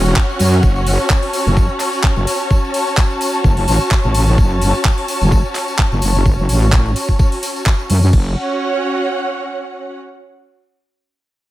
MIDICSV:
0, 0, Header, 1, 4, 480
1, 0, Start_track
1, 0, Key_signature, 3, "minor"
1, 0, Tempo, 468750
1, 646, Time_signature, 4, 2, 24, 8
1, 11780, End_track
2, 0, Start_track
2, 0, Title_t, "String section"
2, 0, Program_c, 0, 48
2, 0, Note_on_c, 0, 61, 77
2, 0, Note_on_c, 0, 66, 84
2, 0, Note_on_c, 0, 73, 74
2, 0, Note_on_c, 0, 78, 82
2, 1037, Note_on_c, 0, 81, 76
2, 1059, Note_off_c, 0, 78, 0
2, 8313, Note_off_c, 0, 61, 0
2, 8326, Note_off_c, 0, 66, 0
2, 8326, Note_off_c, 0, 73, 0
2, 8326, Note_on_c, 0, 61, 81
2, 8352, Note_off_c, 0, 81, 0
2, 8404, Note_on_c, 0, 66, 75
2, 8477, Note_on_c, 0, 73, 75
2, 8544, Note_on_c, 0, 78, 77
2, 10204, Note_off_c, 0, 73, 0
2, 10205, Note_off_c, 0, 61, 0
2, 10205, Note_off_c, 0, 66, 0
2, 10205, Note_off_c, 0, 78, 0
2, 11780, End_track
3, 0, Start_track
3, 0, Title_t, "Wobble bass"
3, 0, Program_c, 1, 39
3, 0, Note_on_c, 1, 28, 94
3, 149, Note_off_c, 1, 28, 0
3, 406, Note_on_c, 1, 42, 92
3, 629, Note_off_c, 1, 42, 0
3, 646, Note_on_c, 1, 30, 98
3, 995, Note_off_c, 1, 30, 0
3, 1496, Note_on_c, 1, 30, 94
3, 1715, Note_off_c, 1, 30, 0
3, 2216, Note_on_c, 1, 30, 103
3, 2309, Note_off_c, 1, 30, 0
3, 3526, Note_on_c, 1, 30, 103
3, 3748, Note_off_c, 1, 30, 0
3, 3766, Note_on_c, 1, 33, 91
3, 3875, Note_off_c, 1, 33, 0
3, 4136, Note_on_c, 1, 33, 108
3, 4468, Note_off_c, 1, 33, 0
3, 4486, Note_on_c, 1, 30, 92
3, 4836, Note_off_c, 1, 30, 0
3, 5336, Note_on_c, 1, 30, 97
3, 5555, Note_off_c, 1, 30, 0
3, 6057, Note_on_c, 1, 30, 108
3, 6149, Note_off_c, 1, 30, 0
3, 6167, Note_on_c, 1, 30, 98
3, 6516, Note_off_c, 1, 30, 0
3, 6536, Note_on_c, 1, 30, 92
3, 6629, Note_off_c, 1, 30, 0
3, 6647, Note_on_c, 1, 33, 99
3, 7109, Note_off_c, 1, 33, 0
3, 8086, Note_on_c, 1, 42, 97
3, 8309, Note_off_c, 1, 42, 0
3, 8326, Note_on_c, 1, 30, 97
3, 8549, Note_off_c, 1, 30, 0
3, 11780, End_track
4, 0, Start_track
4, 0, Title_t, "Drums"
4, 54, Note_on_c, 9, 54, 43
4, 156, Note_off_c, 9, 54, 0
4, 161, Note_on_c, 9, 38, 106
4, 164, Note_on_c, 9, 51, 86
4, 166, Note_on_c, 9, 36, 127
4, 166, Note_on_c, 9, 39, 123
4, 172, Note_on_c, 9, 54, 59
4, 263, Note_off_c, 9, 38, 0
4, 266, Note_off_c, 9, 51, 0
4, 268, Note_off_c, 9, 39, 0
4, 269, Note_off_c, 9, 36, 0
4, 274, Note_off_c, 9, 54, 0
4, 301, Note_on_c, 9, 54, 24
4, 401, Note_on_c, 9, 51, 70
4, 404, Note_off_c, 9, 54, 0
4, 407, Note_on_c, 9, 46, 117
4, 412, Note_on_c, 9, 54, 102
4, 503, Note_off_c, 9, 51, 0
4, 509, Note_off_c, 9, 46, 0
4, 514, Note_off_c, 9, 54, 0
4, 547, Note_on_c, 9, 54, 38
4, 642, Note_off_c, 9, 54, 0
4, 642, Note_on_c, 9, 54, 55
4, 646, Note_on_c, 9, 36, 117
4, 744, Note_off_c, 9, 54, 0
4, 749, Note_off_c, 9, 36, 0
4, 774, Note_on_c, 9, 54, 25
4, 876, Note_off_c, 9, 54, 0
4, 886, Note_on_c, 9, 46, 100
4, 891, Note_on_c, 9, 54, 82
4, 988, Note_off_c, 9, 46, 0
4, 993, Note_off_c, 9, 54, 0
4, 1013, Note_on_c, 9, 54, 38
4, 1115, Note_off_c, 9, 54, 0
4, 1123, Note_on_c, 9, 54, 60
4, 1125, Note_on_c, 9, 39, 116
4, 1126, Note_on_c, 9, 36, 123
4, 1225, Note_off_c, 9, 54, 0
4, 1228, Note_off_c, 9, 36, 0
4, 1228, Note_off_c, 9, 39, 0
4, 1252, Note_on_c, 9, 54, 28
4, 1256, Note_on_c, 9, 46, 63
4, 1354, Note_off_c, 9, 54, 0
4, 1358, Note_off_c, 9, 46, 0
4, 1366, Note_on_c, 9, 46, 100
4, 1367, Note_on_c, 9, 54, 87
4, 1468, Note_off_c, 9, 46, 0
4, 1469, Note_off_c, 9, 54, 0
4, 1503, Note_on_c, 9, 54, 34
4, 1606, Note_off_c, 9, 54, 0
4, 1606, Note_on_c, 9, 36, 121
4, 1607, Note_on_c, 9, 54, 51
4, 1708, Note_off_c, 9, 36, 0
4, 1709, Note_off_c, 9, 54, 0
4, 1730, Note_on_c, 9, 54, 28
4, 1832, Note_off_c, 9, 54, 0
4, 1839, Note_on_c, 9, 54, 93
4, 1845, Note_on_c, 9, 39, 34
4, 1845, Note_on_c, 9, 46, 99
4, 1941, Note_off_c, 9, 54, 0
4, 1947, Note_off_c, 9, 39, 0
4, 1948, Note_off_c, 9, 46, 0
4, 1977, Note_on_c, 9, 54, 42
4, 2080, Note_off_c, 9, 54, 0
4, 2083, Note_on_c, 9, 54, 47
4, 2084, Note_on_c, 9, 39, 110
4, 2086, Note_on_c, 9, 36, 120
4, 2185, Note_off_c, 9, 54, 0
4, 2187, Note_off_c, 9, 39, 0
4, 2188, Note_off_c, 9, 36, 0
4, 2214, Note_on_c, 9, 54, 26
4, 2316, Note_off_c, 9, 54, 0
4, 2326, Note_on_c, 9, 46, 115
4, 2327, Note_on_c, 9, 54, 95
4, 2428, Note_off_c, 9, 46, 0
4, 2429, Note_off_c, 9, 54, 0
4, 2454, Note_on_c, 9, 54, 39
4, 2556, Note_off_c, 9, 54, 0
4, 2564, Note_on_c, 9, 54, 47
4, 2566, Note_on_c, 9, 36, 115
4, 2666, Note_off_c, 9, 54, 0
4, 2668, Note_off_c, 9, 36, 0
4, 2708, Note_on_c, 9, 54, 27
4, 2805, Note_off_c, 9, 54, 0
4, 2805, Note_on_c, 9, 54, 79
4, 2806, Note_on_c, 9, 46, 99
4, 2908, Note_off_c, 9, 46, 0
4, 2908, Note_off_c, 9, 54, 0
4, 2939, Note_on_c, 9, 54, 35
4, 3041, Note_off_c, 9, 54, 0
4, 3045, Note_on_c, 9, 39, 111
4, 3046, Note_on_c, 9, 36, 117
4, 3051, Note_on_c, 9, 54, 50
4, 3147, Note_off_c, 9, 39, 0
4, 3148, Note_off_c, 9, 36, 0
4, 3153, Note_off_c, 9, 54, 0
4, 3176, Note_on_c, 9, 54, 26
4, 3278, Note_off_c, 9, 54, 0
4, 3286, Note_on_c, 9, 46, 101
4, 3292, Note_on_c, 9, 54, 90
4, 3388, Note_off_c, 9, 46, 0
4, 3395, Note_off_c, 9, 54, 0
4, 3417, Note_on_c, 9, 54, 38
4, 3520, Note_off_c, 9, 54, 0
4, 3526, Note_on_c, 9, 36, 119
4, 3532, Note_on_c, 9, 54, 50
4, 3628, Note_off_c, 9, 36, 0
4, 3635, Note_off_c, 9, 54, 0
4, 3653, Note_on_c, 9, 54, 25
4, 3656, Note_on_c, 9, 46, 61
4, 3756, Note_off_c, 9, 54, 0
4, 3758, Note_off_c, 9, 46, 0
4, 3765, Note_on_c, 9, 46, 98
4, 3768, Note_on_c, 9, 54, 92
4, 3868, Note_off_c, 9, 46, 0
4, 3870, Note_off_c, 9, 54, 0
4, 3898, Note_on_c, 9, 54, 41
4, 4001, Note_off_c, 9, 54, 0
4, 4002, Note_on_c, 9, 54, 52
4, 4005, Note_on_c, 9, 39, 110
4, 4006, Note_on_c, 9, 36, 109
4, 4104, Note_off_c, 9, 54, 0
4, 4107, Note_off_c, 9, 39, 0
4, 4109, Note_off_c, 9, 36, 0
4, 4131, Note_on_c, 9, 54, 26
4, 4233, Note_off_c, 9, 54, 0
4, 4242, Note_on_c, 9, 54, 93
4, 4246, Note_on_c, 9, 46, 115
4, 4344, Note_off_c, 9, 54, 0
4, 4348, Note_off_c, 9, 46, 0
4, 4368, Note_on_c, 9, 54, 38
4, 4470, Note_off_c, 9, 54, 0
4, 4486, Note_on_c, 9, 36, 116
4, 4487, Note_on_c, 9, 54, 49
4, 4589, Note_off_c, 9, 36, 0
4, 4590, Note_off_c, 9, 54, 0
4, 4609, Note_on_c, 9, 54, 22
4, 4711, Note_off_c, 9, 54, 0
4, 4726, Note_on_c, 9, 46, 97
4, 4731, Note_on_c, 9, 54, 80
4, 4828, Note_off_c, 9, 46, 0
4, 4834, Note_off_c, 9, 54, 0
4, 4855, Note_on_c, 9, 54, 38
4, 4957, Note_off_c, 9, 54, 0
4, 4965, Note_on_c, 9, 39, 116
4, 4966, Note_on_c, 9, 36, 121
4, 4968, Note_on_c, 9, 54, 52
4, 5068, Note_off_c, 9, 39, 0
4, 5069, Note_off_c, 9, 36, 0
4, 5071, Note_off_c, 9, 54, 0
4, 5096, Note_on_c, 9, 46, 57
4, 5097, Note_on_c, 9, 54, 24
4, 5199, Note_off_c, 9, 46, 0
4, 5200, Note_off_c, 9, 54, 0
4, 5204, Note_on_c, 9, 54, 85
4, 5206, Note_on_c, 9, 46, 98
4, 5306, Note_off_c, 9, 54, 0
4, 5308, Note_off_c, 9, 46, 0
4, 5336, Note_on_c, 9, 54, 37
4, 5439, Note_off_c, 9, 54, 0
4, 5447, Note_on_c, 9, 36, 116
4, 5448, Note_on_c, 9, 54, 52
4, 5549, Note_off_c, 9, 36, 0
4, 5551, Note_off_c, 9, 54, 0
4, 5581, Note_on_c, 9, 54, 26
4, 5681, Note_off_c, 9, 54, 0
4, 5681, Note_on_c, 9, 54, 77
4, 5686, Note_on_c, 9, 39, 36
4, 5686, Note_on_c, 9, 46, 94
4, 5783, Note_off_c, 9, 54, 0
4, 5788, Note_off_c, 9, 39, 0
4, 5789, Note_off_c, 9, 46, 0
4, 5815, Note_on_c, 9, 54, 40
4, 5918, Note_off_c, 9, 54, 0
4, 5925, Note_on_c, 9, 39, 113
4, 5927, Note_on_c, 9, 36, 111
4, 6027, Note_off_c, 9, 39, 0
4, 6029, Note_off_c, 9, 36, 0
4, 6059, Note_on_c, 9, 54, 27
4, 6161, Note_off_c, 9, 54, 0
4, 6162, Note_on_c, 9, 54, 90
4, 6166, Note_on_c, 9, 46, 107
4, 6265, Note_off_c, 9, 54, 0
4, 6268, Note_off_c, 9, 46, 0
4, 6299, Note_on_c, 9, 54, 37
4, 6402, Note_off_c, 9, 54, 0
4, 6407, Note_on_c, 9, 36, 113
4, 6410, Note_on_c, 9, 54, 49
4, 6509, Note_off_c, 9, 36, 0
4, 6513, Note_off_c, 9, 54, 0
4, 6544, Note_on_c, 9, 54, 26
4, 6646, Note_off_c, 9, 54, 0
4, 6646, Note_on_c, 9, 46, 93
4, 6650, Note_on_c, 9, 54, 87
4, 6748, Note_off_c, 9, 46, 0
4, 6752, Note_off_c, 9, 54, 0
4, 6780, Note_on_c, 9, 54, 38
4, 6882, Note_off_c, 9, 54, 0
4, 6882, Note_on_c, 9, 54, 47
4, 6885, Note_on_c, 9, 39, 112
4, 6886, Note_on_c, 9, 36, 118
4, 6985, Note_off_c, 9, 54, 0
4, 6988, Note_off_c, 9, 39, 0
4, 6989, Note_off_c, 9, 36, 0
4, 7021, Note_on_c, 9, 54, 24
4, 7123, Note_off_c, 9, 54, 0
4, 7126, Note_on_c, 9, 46, 100
4, 7128, Note_on_c, 9, 54, 84
4, 7229, Note_off_c, 9, 46, 0
4, 7230, Note_off_c, 9, 54, 0
4, 7256, Note_on_c, 9, 36, 60
4, 7256, Note_on_c, 9, 54, 35
4, 7359, Note_off_c, 9, 36, 0
4, 7359, Note_off_c, 9, 54, 0
4, 7365, Note_on_c, 9, 54, 46
4, 7366, Note_on_c, 9, 36, 116
4, 7467, Note_off_c, 9, 54, 0
4, 7469, Note_off_c, 9, 36, 0
4, 7496, Note_on_c, 9, 46, 57
4, 7502, Note_on_c, 9, 54, 28
4, 7598, Note_off_c, 9, 46, 0
4, 7604, Note_off_c, 9, 54, 0
4, 7606, Note_on_c, 9, 46, 101
4, 7607, Note_on_c, 9, 54, 83
4, 7708, Note_off_c, 9, 46, 0
4, 7709, Note_off_c, 9, 54, 0
4, 7742, Note_on_c, 9, 54, 40
4, 7844, Note_off_c, 9, 54, 0
4, 7845, Note_on_c, 9, 39, 121
4, 7845, Note_on_c, 9, 54, 46
4, 7846, Note_on_c, 9, 36, 116
4, 7947, Note_off_c, 9, 54, 0
4, 7948, Note_off_c, 9, 39, 0
4, 7949, Note_off_c, 9, 36, 0
4, 7978, Note_on_c, 9, 54, 26
4, 8080, Note_off_c, 9, 54, 0
4, 8086, Note_on_c, 9, 46, 115
4, 8088, Note_on_c, 9, 54, 86
4, 8188, Note_off_c, 9, 46, 0
4, 8191, Note_off_c, 9, 54, 0
4, 8215, Note_on_c, 9, 54, 40
4, 8317, Note_off_c, 9, 54, 0
4, 8326, Note_on_c, 9, 36, 113
4, 8326, Note_on_c, 9, 49, 91
4, 8428, Note_off_c, 9, 49, 0
4, 8429, Note_off_c, 9, 36, 0
4, 11780, End_track
0, 0, End_of_file